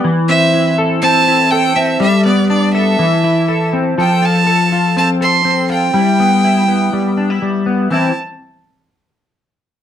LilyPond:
<<
  \new Staff \with { instrumentName = "Violin" } { \time 4/4 \key a \minor \tempo 4 = 122 r8 e''4 r8 a''4 g''8 e''8 | e''8 d''8 d''8 e''2 r8 | g''8 a''4. a''8 c'''4 g''8~ | g''2. r4 |
a''8 r2. r8 | }
  \new Staff \with { instrumentName = "Clean electric guitar" } { \time 4/4 \key a \minor e8 c'8 e'8 a'8 c'8 e'8 a'8 c'8 | g8 b8 d'8 a'8 e8 e'8 a'8 c'8 | <f a'>8 f'8 a'8 f'8 c'8 a'8 c'8 f'8 | <g e'>8 b8 e'8 b8 g8 d'16 e'16 g8 b8 |
<e c' e'>8 r2. r8 | }
>>